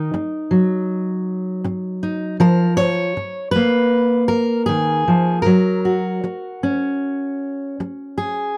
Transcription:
Already playing: D#3 D#4 A#4
0.14 muted steel-string acoustic guitar stroke
0.51 F#3
1.64 muted steel-string acoustic guitar stroke
2.03 D#4
2.40 F3 A#4
2.77 C#5
3.17 muted steel-string acoustic guitar stroke
3.51 B4
3.56 A#3
4.28 A#4
4.66 D#3 G#4
5.08 F3
5.42 A#4
5.46 F#3
5.85 F#4
6.24 muted steel-string acoustic guitar stroke
6.63 C#4
7.80 muted steel-string acoustic guitar stroke
8.18 G#4

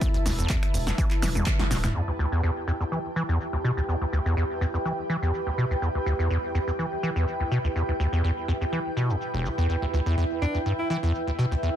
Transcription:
Already playing: E4 B4 E5 A5
0.01 E2, kick, closed hi-hat, shaker
0.14 D2, closed hi-hat
0.26 E1 D2, snare, open hi-hat, shaker
0.38 E2, closed hi-hat, shaker
0.49 E2, kick, clap, closed hi-hat, shaker
0.63 finger snap, closed hi-hat
0.74 E1 E2, open hi-hat, shaker
0.87 E2, snare, closed hi-hat, shaker
0.98 E3, kick, closed hi-hat, shaker
1.11 clap, closed hi-hat
1.22 E1 E3, finger snap, snare, open hi-hat, high tom, shaker
1.35 E2, closed hi-hat, high tom, shaker
1.46 kick, clap, closed hi-hat, mid tom, shaker
1.59 D2, snare, closed hi-hat, mid tom
1.71 D1 B2, snare, open hi-hat, shaker
1.83 D2, finger snap, snare, closed hi-hat, mid tom, shaker
1.95 E2 E4 G4 G5, shaker
2.08 D2
2.19 D2, shaker
2.32 E2, shaker
2.43 E2, shaker
2.63 B4
2.68 E2, shaker
2.80 E2, shaker
2.87 G5
2.92 E3, shaker
3.16 E3, shaker
3.29 E2, shaker
3.41 shaker
3.53 D2
3.64 B2, shaker
3.77 D2, shaker
3.89 E2, shaker
4.01 D2
4.13 D2, shaker
4.26 E2, shaker
4.37 E2, shaker
4.61 E2, shaker
4.74 E2, shaker
4.85 E3, shaker
5.10 E3, shaker
5.22 E2, shaker
5.34 shaker
5.47 D2
5.58 B2, shaker
5.71 D2, shaker
5.82 E2, shaker
5.95 D2
6.06 D2, shaker
6.19 E2, shaker
6.30 E2, shaker
6.55 E2, shaker
6.68 E2, shaker
6.79 E3, shaker
7.03 E3, shaker
7.16 E2, shaker
7.28 shaker
7.40 D2
7.51 B2, shaker
7.64 D2, shaker
7.76 E2, shaker
7.89 D2
8.00 D2, shaker
8.13 E2, shaker
8.24 E2, shaker
8.48 E2, shaker
8.61 E2, shaker
8.73 E3, shaker
8.97 B2, shaker
9.10 E2, shaker
9.22 shaker
9.34 E1
9.45 D2, shaker
9.58 E2, shaker
9.69 E2 E4 E5, shaker
9.82 D2
9.93 D2, shaker
10.06 E2, shaker
10.18 E2, shaker
10.42 E2 D4, shaker
10.55 E2, shaker
10.66 G2, shaker
10.79 E4
10.90 E3 E4, shaker
11.03 E2, shaker
11.15 shaker
11.27 D2
11.39 B2, shaker
11.51 D2, shaker
11.63 E2, shaker

